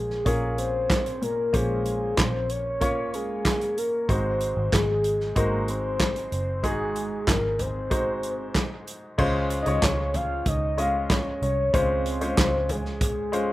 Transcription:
0.00 0.22 A#1 medium
0.00 1.22 A#2 soft
0.00 0.25 A#3 medium
0.00 0.26 C#4 medium
0.00 0.26 F4 medium
0.00 0.28 G#4 medium
0.00 1.54 C5 medium
0.10 snare soft
0.25 1.22 A#1 medium
0.25 1.21 A#3 medium
0.25 1.22 C#4 medium
0.25 1.22 F4 medium
0.25 1.22 G#4 medium
0.25 0.58 A#4 loud
0.25 kick medium
0.25 closed hi-hat medium
0.58 1.24 C5 medium
0.58 closed hi-hat medium
0.90 kick loud
0.90 snare medium
0.90 clap medium
0.90 closed hi-hat medium
1.06 closed hi-hat soft
1.22 1.52 G#1 medium
1.22 2.13 A#2 soft
1.22 1.56 A#4 loud
1.22 closed hi-hat medium
1.53 2.14 A#1 medium
1.53 2.49 A#3 medium
1.53 2.49 C#4 medium
1.53 2.49 F4 medium
1.53 2.19 G#4 loud
1.53 2.50 C5 medium
1.53 kick medium
1.53 closed hi-hat medium
1.85 closed hi-hat medium
2.18 3.73 A#1 medium
2.18 2.52 C5 medium
2.18 kick medium
2.18 snare loud
2.18 clap medium
2.18 closed hi-hat medium
2.49 3.16 C#5 loud
2.49 closed hi-hat medium
2.81 3.77 A#3 medium
2.81 3.77 C#4 medium
2.81 3.77 F4 medium
2.81 3.77 C#5 medium
2.81 kick medium
2.81 closed hi-hat medium
3.14 3.79 G#4 loud
3.14 closed hi-hat medium
3.45 kick medium
3.45 snare medium
3.45 clap medium
3.45 closed hi-hat medium
3.61 closed hi-hat soft
3.78 4.11 A#4 medium
3.78 closed hi-hat medium
4.08 4.53 G#1 medium
4.08 5.01 G#2 medium
4.08 5.04 G#3 medium
4.08 5.05 D#4 medium
4.08 5.05 F#4 medium
4.08 4.75 C5 loud
4.08 5.05 C5 medium
4.08 kick medium
4.08 closed hi-hat medium
4.40 closed hi-hat medium
4.57 4.71 G#1 medium
4.73 5.33 G#1 loud
4.73 5.36 G#4 medium
4.73 kick medium
4.73 snare loud
4.73 clap medium
4.73 closed hi-hat medium
5.04 closed hi-hat medium
5.20 snare soft
5.36 6.28 G#1 medium
5.36 6.32 G#3 medium
5.36 6.32 D#4 medium
5.36 6.32 F#4 medium
5.36 5.71 A#4 medium
5.36 6.32 C5 medium
5.36 kick medium
5.36 closed hi-hat medium
5.68 6.32 C5 medium
5.68 closed hi-hat medium
6.00 kick medium
6.00 snare medium
6.00 clap medium
6.00 closed hi-hat medium
6.16 closed hi-hat soft
6.32 6.64 F#1 medium
6.32 6.67 C5 medium
6.32 closed hi-hat medium
6.63 7.24 G#1 medium
6.63 7.55 G#2 medium
6.63 7.59 G#3 medium
6.63 7.59 D#4 medium
6.63 7.59 F#4 medium
6.63 7.60 G#4 medium
6.63 7.30 G#4 loud
6.63 kick medium
6.63 closed hi-hat medium
6.96 closed hi-hat medium
7.27 8.83 G#1 medium
7.27 7.62 A#4 medium
7.27 kick loud
7.27 snare loud
7.27 clap medium
7.27 closed hi-hat medium
7.59 8.88 C5 loud
7.59 closed hi-hat medium
7.59 floor tom medium
7.90 8.86 G#3 medium
7.90 8.87 D#4 medium
7.90 8.87 F#4 medium
7.90 8.87 C5 medium
7.90 kick medium
7.90 closed hi-hat medium
8.23 closed hi-hat medium
8.55 kick medium
8.55 snare medium
8.55 clap medium
8.55 closed hi-hat medium
8.87 closed hi-hat medium
9.18 9.63 C#2 medium
9.18 10.10 C#3 medium
9.18 9.54 G#3 medium
9.18 9.54 C#4 medium
9.18 9.55 F4 medium
9.18 9.55 C5 medium
9.18 kick medium
9.18 crash medium
9.50 closed hi-hat medium
9.62 10.50 G#3 medium
9.62 9.85 D#5 medium
9.62 closed hi-hat medium
9.66 9.81 C#2 medium
9.66 10.50 C#4 medium
9.66 10.50 F4 medium
9.66 10.51 C#5 medium
9.82 10.42 C#2 medium
9.82 10.17 C#5 medium
9.82 kick loud
9.82 snare loud
9.82 clap medium
9.82 closed hi-hat medium
10.14 10.49 F5 loud
10.14 closed hi-hat medium
10.14 floor tom medium
10.46 11.38 C#2 medium
10.46 10.81 D#5 loud
10.46 kick medium
10.46 closed hi-hat medium
10.77 11.49 G#3 medium
10.77 11.50 C#4 medium
10.77 11.50 F4 medium
10.77 11.50 D#5 medium
10.77 11.13 F5 loud
10.77 closed hi-hat medium
11.10 11.42 C#5 loud
11.10 kick loud
11.10 snare medium
11.10 clap medium
11.10 closed hi-hat medium
11.42 11.71 C2 medium
11.42 11.72 C#5 loud
11.42 closed hi-hat medium
11.73 12.33 C#2 medium
11.73 12.65 C#3 medium
11.73 12.09 G#3 medium
11.73 12.10 C#4 medium
11.73 12.10 F4 medium
11.73 12.10 C5 medium
11.73 12.72 C5 loud
11.73 kick loud
11.73 closed hi-hat medium
12.06 closed hi-hat medium
12.21 13.05 G#3 medium
12.21 13.05 C#4 medium
12.21 13.05 F4 medium
12.21 13.05 C5 medium
12.21 closed hi-hat medium
12.38 13.53 C#2 medium
12.38 kick loud
12.38 snare loud
12.38 clap loud
12.38 closed hi-hat medium
12.69 13.02 G#4 medium
12.69 closed hi-hat medium
12.69 floor tom medium
12.85 snare soft
13.01 13.53 G#4 medium
13.01 kick loud
13.01 closed hi-hat medium
13.32 13.53 G#3 medium
13.32 13.53 C#4 medium
13.32 13.53 F4 medium
13.32 13.53 C5 medium
13.32 closed hi-hat medium

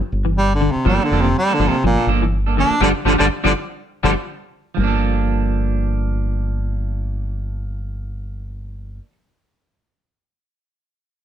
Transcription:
0.12 0.67 G1 medium
0.25 0.39 E3 medium
0.38 0.53 G3 loud
0.55 0.73 D3 medium
0.61 0.75 D3 medium
0.71 0.86 C3 medium
0.75 muted fingered electric bass stroke soft
0.85 0.98 G1 loud
0.85 0.99 F3 medium
0.85 1.00 F3 medium
0.85 1.05 G3 loud
0.85 1.00 A#3 medium
0.85 1.00 D4 medium
0.85 0.99 A4 medium
1.00 1.23 D3 medium
1.00 1.11 A#3 soft
1.00 1.11 D4 soft
1.00 1.11 A4 medium
1.11 1.33 F1 medium
1.11 1.27 F3 medium
1.11 1.27 A#3 medium
1.11 1.28 D4 medium
1.11 1.28 A4 medium
1.21 1.36 C3 medium
1.21 1.38 D3 medium
1.38 1.55 G3 loud
1.49 1.59 A#3 soft
1.49 1.60 A4 medium
1.54 1.70 D3 medium
1.59 1.71 G1 medium
1.59 1.75 F3 medium
1.59 1.73 F3 medium
1.59 1.76 A#3 medium
1.59 1.76 D4 medium
1.59 1.76 A4 medium
1.68 1.84 C3 medium
1.83 1.96 G1 loud
1.83 2.09 A#2 loud
1.83 1.98 F3 medium
1.98 2.07 A#3 soft
1.98 2.08 D4 soft
1.98 2.08 A4 medium
2.07 2.62 G1 medium
2.07 2.24 F3 medium
2.07 2.24 A#3 medium
2.07 2.24 D4 medium
2.07 2.25 A4 medium
2.22 2.36 E3 medium
2.46 2.57 A#3 soft
2.46 2.57 D4 medium
2.46 2.57 A4 medium
2.57 2.71 D3 medium
2.57 2.73 F3 medium
2.57 2.74 A#3 medium
2.57 2.74 D4 medium
2.57 2.82 D4 loud
2.57 2.74 A4 medium
2.70 muted fingered electric bass stroke soft
2.81 2.91 G1 loud
2.81 2.90 D3 loud
2.81 2.89 D3 medium
2.81 2.90 F3 medium
2.81 2.90 G3 medium
2.81 2.91 D4 medium
2.81 2.91 F4 medium
2.81 2.91 G4 medium
3.05 3.16 G1 medium
3.05 3.15 D3 loud
3.05 3.13 D3 medium
3.05 3.14 F3 medium
3.05 3.14 G3 medium
3.05 3.15 D4 medium
3.05 3.15 F4 medium
3.05 3.15 G4 loud
3.18 3.28 G1 medium
3.18 3.26 D3 medium
3.18 3.26 D3 loud
3.18 3.26 F3 medium
3.18 3.26 G3 medium
3.18 3.26 D4 medium
3.18 3.26 F4 medium
3.18 3.26 G4 medium
3.44 3.52 G1 medium
3.44 3.51 D3 medium
3.44 3.52 D3 medium
3.44 3.51 F3 medium
3.44 3.51 G3 medium
3.44 3.51 D4 loud
3.44 3.51 F4 medium
3.44 3.51 G4 medium
4.03 4.14 G1 medium
4.03 4.12 D3 medium
4.03 4.11 D3 medium
4.03 4.12 F3 medium
4.03 4.12 G3 loud
4.03 4.13 D4 medium
4.03 4.13 F4 medium
4.03 4.13 G4 medium
4.75 8.99 G1 medium
4.75 4.92 G2 medium
4.75 8.99 F3 medium
4.80 9.05 A#3 medium
4.80 9.09 D4 medium
4.87 9.12 A4 medium

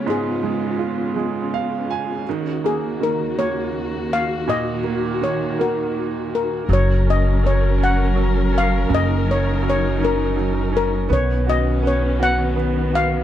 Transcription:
0.00 4.42 C#3 medium
0.00 0.43 G#3 soft
0.00 2.22 B3 soft
0.00 0.79 F4 soft
0.00 2.22 F4 medium
0.06 2.22 G#2 medium
0.06 1.87 G#4 medium
0.43 1.15 G#3 soft
0.79 2.22 F4 soft
1.16 2.23 G#3 soft
1.54 1.87 F5 medium
1.91 2.24 G#5 medium
2.26 6.65 D#2 medium
2.26 2.99 D#3 medium
2.26 6.64 F#4 medium
2.64 3.37 A#3 soft
2.64 2.98 G#4 medium
3.01 4.43 D#3 soft
3.01 3.39 A#4 medium
3.38 4.80 A#3 soft
3.38 4.13 C#5 medium
4.13 4.45 F5 medium
4.48 6.65 A#2 medium
4.48 6.67 D#3 medium
4.48 5.24 D#5 medium
4.84 5.57 A#3 soft
5.21 6.65 D#3 soft
5.21 5.39 C#5 medium
5.59 6.66 A#3 soft
5.59 6.38 F#4 soft
5.59 6.34 A#4 medium
6.35 6.71 A#4 medium
6.69 8.86 F#1 medium
6.69 7.42 F#3 medium
6.69 11.06 F#3 medium
6.69 8.88 C#4 medium
6.69 11.05 A#4 medium
6.73 7.09 C#5 medium
7.07 7.77 C#4 soft
7.07 7.46 D#5 medium
7.43 8.14 F#3 soft
7.43 7.82 C#5 medium
7.78 8.51 C#4 soft
7.84 8.51 F#5 medium
8.16 9.58 F#3 soft
8.52 9.24 C#4 soft
8.58 8.93 F5 medium
8.89 11.05 F#1 medium
8.89 11.05 C#3 medium
8.89 11.07 D#4 medium
8.94 9.29 D#5 medium
9.25 9.99 C#4 soft
9.31 9.63 C#5 medium
9.62 10.35 F#3 soft
9.70 10.04 C#5 medium
10.00 10.71 C#4 soft
10.05 10.75 A#4 medium
10.36 11.07 F#3 soft
10.72 11.08 C#4 soft
10.77 10.92 A#4 medium
11.08 13.24 B1 medium
11.08 13.24 D#3 medium
11.08 11.81 B3 medium
11.08 13.24 B3 medium
11.08 13.24 C#4 medium
11.13 11.49 C#5 medium
11.47 12.18 F#4 soft
11.47 11.65 D#5 medium
11.83 12.55 B3 soft
11.87 12.23 C#5 medium
12.20 12.92 F#4 medium
12.20 12.97 F#5 medium
12.56 13.24 B3 soft
12.93 13.24 F#4 soft
12.93 13.24 F5 medium

